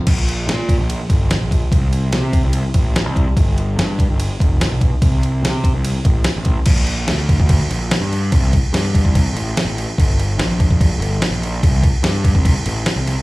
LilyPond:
<<
  \new Staff \with { instrumentName = "Picked electric bass" } { \clef bass \time 4/4 \key bes \major \tempo 4 = 145 bes,,4 bes,8. bes,,8 r16 g,,8. bes,,8 r16 | c,4 c8. c,8 r16 a,,8. c,8 r16 | g,,4 g,8. g,,8 r16 f,,8. ces,8 r16 | c,4 c8. c,8 r16 a,,8 r16 a,,8 r16 |
bes,,4 d,8. d,8 r16 bes,,8 r16 g,8. | c,8 r8 g,8. c,8 r16 a,,8 r16 a,,8 r16 | g,,4 bes,,8. bes,,8 r16 g,,8 r16 bes,,8. | c,8 r8 g,8. c,8 r16 a,,8 r16 c,8 r16 | }
  \new DrumStaff \with { instrumentName = "Drums" } \drummode { \time 4/4 <cymc bd cymr>8 cymr8 <cymr sn>8 <bd cymr>8 cymr8 <bd cymr>8 <cymr sn>8 <bd cymr>8 | <bd cymr>8 cymr8 <cymr sn>8 <bd cymr>8 cymr8 <bd cymr>8 <cymr sn>8 <bd cymr>8 | <bd cymr>8 cymr8 <cymr sn>8 <bd cymr>8 cymr8 <bd cymr>8 <cymr sn>8 <bd cymr>8 | <bd cymr>8 cymr8 <cymr sn>8 <bd cymr>8 cymr8 <bd cymr>8 <cymr sn>8 <bd cymr>8 |
<cymc bd>8 cymc8 <cymc sn>8 <cymc bd>16 bd16 <cymc bd>8 cymc8 <cymc sn>8 cymc8 | <cymc bd>8 <cymc bd>8 <cymc sn>16 sn16 <cymc bd>16 bd16 <cymc bd>8 cymc8 <cymc sn>8 cymc8 | <cymc bd>8 cymc8 <cymc sn>16 sn16 <cymc bd>16 bd16 <cymc bd>8 cymc8 <cymc sn>8 cymc8 | <cymc bd>8 <cymc bd>8 <cymc sn>8 <cymc bd>16 bd16 <cymc bd>8 cymc8 <cymc sn>8 <cymc sn>8 | }
>>